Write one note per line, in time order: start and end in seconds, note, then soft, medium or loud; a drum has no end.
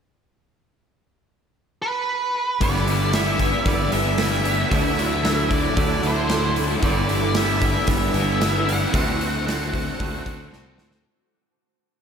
1.82 2.63 B4 medium
2.59 3.54 G1 medium
2.59 3.13 G2 loud
2.59 3.14 D3 medium
2.59 2.88 E3 medium
2.59 2.87 G3 loud
2.59 2.88 D4 loud
2.59 8.89 E4 medium
2.59 4.68 B4 medium
2.59 3.14 D5 loud
2.59 4.68 G5 medium
2.59 11.01 D6 medium
2.59 kick loud
2.59 open hi-hat medium
2.63 2.86 B3 medium
2.63 2.86 E4 medium
2.75 snare soft
2.86 3.13 E3 medium
2.86 3.13 G3 medium
2.86 3.14 B3 medium
2.86 3.15 D4 medium
2.86 3.15 E4 medium
2.86 open hi-hat medium
3.13 4.17 D3 medium
3.13 3.41 E3 medium
3.13 3.40 G3 medium
3.13 3.39 B3 medium
3.13 3.93 D4 medium
3.13 3.39 E4 medium
3.13 3.68 E5 loud
3.13 snare loud
3.13 open hi-hat medium
3.39 3.65 E3 medium
3.39 3.66 G3 medium
3.39 3.65 B3 medium
3.39 3.67 E4 medium
3.39 kick medium
3.39 open hi-hat medium
3.65 3.89 G1 medium
3.65 4.18 G2 medium
3.65 4.18 D3 medium
3.65 3.93 E3 loud
3.65 3.92 G3 loud
3.65 3.91 B3 medium
3.65 3.91 E4 loud
3.65 3.93 D5 medium
3.65 kick loud
3.65 open hi-hat medium
3.92 4.63 G1 medium
3.92 4.17 E3 medium
3.92 4.18 G3 medium
3.92 4.19 B3 medium
3.92 4.20 D4 medium
3.92 4.20 E4 medium
3.92 4.70 E5 loud
3.92 open hi-hat medium
4.18 4.70 D3 medium
4.18 4.46 E3 medium
4.18 4.45 G3 medium
4.18 4.44 B3 medium
4.18 4.45 D4 medium
4.18 4.44 E4 medium
4.18 snare loud
4.18 open hi-hat medium
4.44 4.71 E3 medium
4.44 4.70 G3 medium
4.44 4.70 B3 medium
4.44 4.73 D4 medium
4.44 4.73 E4 medium
4.44 open hi-hat medium
4.70 5.66 D2 loud
4.70 5.24 D3 medium
4.70 5.21 F#3 medium
4.70 4.96 A3 loud
4.70 4.96 D4 medium
4.70 4.95 E4 loud
4.70 6.80 A4 medium
4.70 5.53 E5 loud
4.70 6.81 F#5 medium
4.70 kick loud
4.70 open hi-hat medium
4.96 5.22 F#3 medium
4.96 5.22 A3 medium
4.96 5.24 D4 medium
4.96 5.25 E4 medium
4.96 open hi-hat medium
5.22 6.29 D3 medium
5.22 5.75 F#3 medium
5.22 5.50 A3 medium
5.22 5.51 D4 medium
5.22 5.49 E4 medium
5.22 snare loud
5.22 open hi-hat medium
5.49 5.76 A3 medium
5.49 5.77 D4 medium
5.49 5.77 E4 medium
5.49 kick medium
5.49 open hi-hat medium
5.54 5.79 D5 medium
5.76 6.01 D2 loud
5.76 6.29 D3 loud
5.76 6.28 F#3 loud
5.76 6.04 A3 medium
5.76 6.04 D4 loud
5.76 6.02 E4 loud
5.76 kick loud
5.76 open hi-hat medium
5.80 6.06 D5 medium
6.03 6.75 D2 loud
6.03 6.29 F#3 medium
6.03 6.30 A3 medium
6.03 6.31 D4 medium
6.03 6.31 E4 medium
6.03 6.54 C5 medium
6.03 open hi-hat soft
6.29 6.81 D3 medium
6.29 6.81 F#3 medium
6.29 6.57 A3 medium
6.29 6.57 D4 medium
6.29 6.55 E4 medium
6.29 snare loud
6.29 open hi-hat medium
6.56 6.83 F#3 medium
6.56 6.82 A3 medium
6.56 6.84 D4 medium
6.56 6.81 E4 medium
6.56 open hi-hat medium
6.82 7.77 G1 loud
6.82 7.35 G2 loud
6.82 7.36 D3 loud
6.82 7.10 E3 medium
6.82 7.09 G3 loud
6.82 7.08 B3 medium
6.82 7.08 D4 loud
6.82 7.07 E4 loud
6.82 8.92 B4 medium
6.82 7.36 D5 medium
6.82 8.92 G5 medium
6.82 kick loud
6.82 open hi-hat medium
7.09 7.33 E3 medium
7.09 7.34 G3 medium
7.09 7.35 B3 medium
7.09 7.37 D4 medium
7.09 7.36 E4 medium
7.09 open hi-hat medium
7.34 8.39 D3 medium
7.34 7.63 E3 medium
7.34 7.62 G3 medium
7.34 7.61 B3 medium
7.34 8.15 D4 medium
7.34 7.60 E4 medium
7.34 7.87 E5 medium
7.34 snare loud
7.34 open hi-hat medium
7.61 7.88 E3 medium
7.61 7.88 G3 medium
7.61 7.89 B3 medium
7.61 7.89 E4 medium
7.61 kick medium
7.61 open hi-hat medium
7.87 8.12 G1 medium
7.87 8.41 G2 medium
7.87 8.41 D3 medium
7.87 8.15 E3 medium
7.87 8.14 G3 loud
7.87 8.13 B3 loud
7.87 8.12 E4 loud
7.87 8.70 E5 medium
7.87 kick loud
7.87 open hi-hat medium
8.13 8.85 G1 loud
8.13 8.38 E3 medium
8.13 8.39 G3 medium
8.13 8.40 B3 medium
8.13 8.42 D4 medium
8.13 8.41 E4 medium
8.13 open hi-hat medium
8.39 8.91 D3 medium
8.39 8.68 E3 medium
8.39 8.67 G3 medium
8.39 8.66 B3 medium
8.39 8.67 D4 medium
8.39 8.65 E4 medium
8.39 snare loud
8.39 open hi-hat medium
8.66 8.91 E3 medium
8.66 8.93 G3 medium
8.66 8.92 B3 medium
8.66 8.94 D4 medium
8.66 8.92 E4 medium
8.66 10.47 F#5 medium
8.66 open hi-hat medium
8.91 9.88 D2 loud
8.91 9.44 D3 medium
8.91 9.21 A3 medium
8.91 9.19 C4 medium
8.91 11.03 F#4 medium
8.91 9.18 F#4 loud
8.91 11.03 C5 medium
8.91 11.03 A5 medium
8.91 kick loud
8.91 open hi-hat medium
9.19 9.45 A3 medium
9.19 9.46 C4 medium
9.19 9.47 F#4 medium
9.19 open hi-hat medium
9.46 9.98 D3 medium
9.46 9.74 A3 medium
9.46 9.73 C4 medium
9.46 9.71 F#4 medium
9.46 snare loud
9.46 open hi-hat medium
9.73 9.99 A3 medium
9.73 10.00 C4 medium
9.73 10.01 F#4 medium
9.73 kick medium
9.73 open hi-hat medium
9.99 10.23 D2 medium
9.99 10.51 D3 medium
9.99 10.28 A3 medium
9.99 10.27 C4 medium
9.99 10.25 F#4 medium
9.99 kick loud
9.99 open hi-hat medium
10.26 10.50 D2 loud
10.26 10.52 A3 medium
10.26 10.53 C4 medium
10.26 10.53 F#4 medium
10.26 kick medium
10.26 open hi-hat soft
10.53 10.77 C2 medium
10.53 11.04 D3 medium
10.53 10.80 A3 medium
10.53 10.78 C4 medium
10.53 10.77 F#4 medium
10.53 snare medium
10.78 11.03 D2 medium
10.78 11.05 A3 medium
10.78 11.04 C4 medium
10.78 11.03 F#4 medium
10.78 snare medium
10.91 snare medium